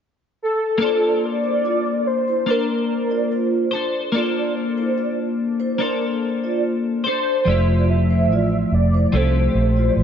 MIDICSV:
0, 0, Header, 1, 5, 480
1, 0, Start_track
1, 0, Tempo, 833333
1, 464, Time_signature, 4, 2, 24, 8
1, 5780, End_track
2, 0, Start_track
2, 0, Title_t, "Soft synth lead"
2, 0, Program_c, 0, 80
2, 245, Note_on_c, 0, 69, 91
2, 721, Note_on_c, 0, 74, 115
2, 730, Note_off_c, 0, 69, 0
2, 1192, Note_on_c, 0, 72, 97
2, 1201, Note_off_c, 0, 74, 0
2, 1441, Note_on_c, 0, 70, 79
2, 1450, Note_off_c, 0, 72, 0
2, 2153, Note_off_c, 0, 70, 0
2, 4068, Note_on_c, 0, 72, 104
2, 4549, Note_on_c, 0, 76, 108
2, 4557, Note_off_c, 0, 72, 0
2, 5035, Note_on_c, 0, 74, 97
2, 5044, Note_off_c, 0, 76, 0
2, 5278, Note_on_c, 0, 72, 94
2, 5286, Note_off_c, 0, 74, 0
2, 5780, Note_off_c, 0, 72, 0
2, 5780, End_track
3, 0, Start_track
3, 0, Title_t, "Vibraphone"
3, 0, Program_c, 1, 11
3, 467, Note_on_c, 1, 74, 81
3, 470, Note_on_c, 1, 65, 64
3, 693, Note_off_c, 1, 74, 0
3, 695, Note_off_c, 1, 65, 0
3, 827, Note_on_c, 1, 72, 58
3, 834, Note_on_c, 1, 64, 49
3, 939, Note_off_c, 1, 72, 0
3, 943, Note_off_c, 1, 64, 0
3, 951, Note_on_c, 1, 74, 73
3, 955, Note_on_c, 1, 65, 59
3, 1062, Note_off_c, 1, 74, 0
3, 1064, Note_off_c, 1, 65, 0
3, 1313, Note_on_c, 1, 72, 62
3, 1317, Note_on_c, 1, 64, 48
3, 1422, Note_off_c, 1, 72, 0
3, 1425, Note_off_c, 1, 64, 0
3, 1431, Note_on_c, 1, 70, 73
3, 1436, Note_on_c, 1, 62, 52
3, 1542, Note_off_c, 1, 70, 0
3, 1544, Note_off_c, 1, 62, 0
3, 1793, Note_on_c, 1, 74, 65
3, 1796, Note_on_c, 1, 65, 48
3, 1902, Note_off_c, 1, 74, 0
3, 1904, Note_off_c, 1, 65, 0
3, 1909, Note_on_c, 1, 72, 59
3, 1913, Note_on_c, 1, 65, 50
3, 2245, Note_off_c, 1, 72, 0
3, 2247, Note_off_c, 1, 65, 0
3, 2389, Note_on_c, 1, 74, 78
3, 2394, Note_on_c, 1, 65, 67
3, 2614, Note_off_c, 1, 74, 0
3, 2617, Note_off_c, 1, 65, 0
3, 2751, Note_on_c, 1, 72, 62
3, 2757, Note_on_c, 1, 64, 46
3, 2861, Note_off_c, 1, 72, 0
3, 2865, Note_off_c, 1, 64, 0
3, 2867, Note_on_c, 1, 74, 70
3, 2870, Note_on_c, 1, 65, 51
3, 2979, Note_off_c, 1, 74, 0
3, 2981, Note_off_c, 1, 65, 0
3, 3224, Note_on_c, 1, 72, 68
3, 3230, Note_on_c, 1, 64, 47
3, 3338, Note_off_c, 1, 72, 0
3, 3341, Note_off_c, 1, 64, 0
3, 3352, Note_on_c, 1, 70, 68
3, 3354, Note_on_c, 1, 62, 50
3, 3462, Note_off_c, 1, 70, 0
3, 3463, Note_off_c, 1, 62, 0
3, 3708, Note_on_c, 1, 74, 54
3, 3712, Note_on_c, 1, 65, 44
3, 3934, Note_off_c, 1, 74, 0
3, 3936, Note_off_c, 1, 65, 0
3, 4299, Note_on_c, 1, 74, 80
3, 4304, Note_on_c, 1, 65, 62
3, 4529, Note_off_c, 1, 74, 0
3, 4532, Note_off_c, 1, 65, 0
3, 4666, Note_on_c, 1, 72, 65
3, 4671, Note_on_c, 1, 64, 54
3, 4778, Note_off_c, 1, 72, 0
3, 4781, Note_off_c, 1, 64, 0
3, 4794, Note_on_c, 1, 74, 69
3, 4797, Note_on_c, 1, 65, 53
3, 4903, Note_off_c, 1, 74, 0
3, 4904, Note_off_c, 1, 65, 0
3, 5150, Note_on_c, 1, 72, 66
3, 5157, Note_on_c, 1, 64, 48
3, 5260, Note_off_c, 1, 72, 0
3, 5264, Note_off_c, 1, 64, 0
3, 5267, Note_on_c, 1, 69, 73
3, 5271, Note_on_c, 1, 60, 60
3, 5379, Note_off_c, 1, 69, 0
3, 5381, Note_off_c, 1, 60, 0
3, 5627, Note_on_c, 1, 74, 59
3, 5632, Note_on_c, 1, 65, 47
3, 5739, Note_off_c, 1, 74, 0
3, 5741, Note_off_c, 1, 65, 0
3, 5752, Note_on_c, 1, 72, 64
3, 5758, Note_on_c, 1, 64, 48
3, 5780, Note_off_c, 1, 64, 0
3, 5780, Note_off_c, 1, 72, 0
3, 5780, End_track
4, 0, Start_track
4, 0, Title_t, "Clean electric guitar"
4, 0, Program_c, 2, 27
4, 449, Note_on_c, 2, 58, 73
4, 465, Note_on_c, 2, 62, 68
4, 473, Note_on_c, 2, 69, 71
4, 486, Note_on_c, 2, 72, 77
4, 1412, Note_off_c, 2, 58, 0
4, 1419, Note_on_c, 2, 58, 53
4, 1420, Note_off_c, 2, 62, 0
4, 1427, Note_on_c, 2, 62, 52
4, 1436, Note_off_c, 2, 69, 0
4, 1436, Note_off_c, 2, 72, 0
4, 1441, Note_on_c, 2, 72, 57
4, 2135, Note_off_c, 2, 72, 0
4, 2138, Note_on_c, 2, 72, 56
4, 2141, Note_off_c, 2, 58, 0
4, 2145, Note_off_c, 2, 62, 0
4, 2149, Note_on_c, 2, 69, 45
4, 2160, Note_on_c, 2, 62, 44
4, 2374, Note_on_c, 2, 58, 76
4, 2380, Note_off_c, 2, 62, 0
4, 2381, Note_off_c, 2, 72, 0
4, 2386, Note_off_c, 2, 69, 0
4, 2387, Note_on_c, 2, 62, 67
4, 2397, Note_on_c, 2, 69, 76
4, 2408, Note_on_c, 2, 72, 71
4, 3325, Note_off_c, 2, 58, 0
4, 3332, Note_on_c, 2, 58, 65
4, 3334, Note_off_c, 2, 62, 0
4, 3341, Note_on_c, 2, 62, 58
4, 3346, Note_off_c, 2, 69, 0
4, 3349, Note_off_c, 2, 72, 0
4, 3349, Note_on_c, 2, 69, 62
4, 3353, Note_on_c, 2, 72, 65
4, 4053, Note_off_c, 2, 72, 0
4, 4055, Note_on_c, 2, 72, 50
4, 4057, Note_off_c, 2, 58, 0
4, 4062, Note_off_c, 2, 62, 0
4, 4067, Note_off_c, 2, 69, 0
4, 4069, Note_on_c, 2, 69, 50
4, 4077, Note_on_c, 2, 62, 43
4, 4291, Note_on_c, 2, 53, 59
4, 4299, Note_off_c, 2, 72, 0
4, 4306, Note_off_c, 2, 69, 0
4, 4306, Note_on_c, 2, 57, 60
4, 4310, Note_off_c, 2, 62, 0
4, 4317, Note_on_c, 2, 64, 68
4, 4327, Note_on_c, 2, 67, 68
4, 5252, Note_off_c, 2, 53, 0
4, 5255, Note_on_c, 2, 53, 58
4, 5261, Note_off_c, 2, 57, 0
4, 5263, Note_on_c, 2, 57, 62
4, 5265, Note_off_c, 2, 64, 0
4, 5272, Note_off_c, 2, 67, 0
4, 5272, Note_on_c, 2, 64, 62
4, 5279, Note_on_c, 2, 67, 66
4, 5780, Note_off_c, 2, 53, 0
4, 5780, Note_off_c, 2, 57, 0
4, 5780, Note_off_c, 2, 64, 0
4, 5780, Note_off_c, 2, 67, 0
4, 5780, End_track
5, 0, Start_track
5, 0, Title_t, "Fingered electric bass"
5, 0, Program_c, 3, 33
5, 4303, Note_on_c, 3, 29, 94
5, 4784, Note_off_c, 3, 29, 0
5, 4784, Note_on_c, 3, 33, 70
5, 4975, Note_off_c, 3, 33, 0
5, 5022, Note_on_c, 3, 29, 67
5, 5214, Note_off_c, 3, 29, 0
5, 5261, Note_on_c, 3, 36, 87
5, 5453, Note_off_c, 3, 36, 0
5, 5500, Note_on_c, 3, 34, 83
5, 5693, Note_off_c, 3, 34, 0
5, 5741, Note_on_c, 3, 33, 83
5, 5780, Note_off_c, 3, 33, 0
5, 5780, End_track
0, 0, End_of_file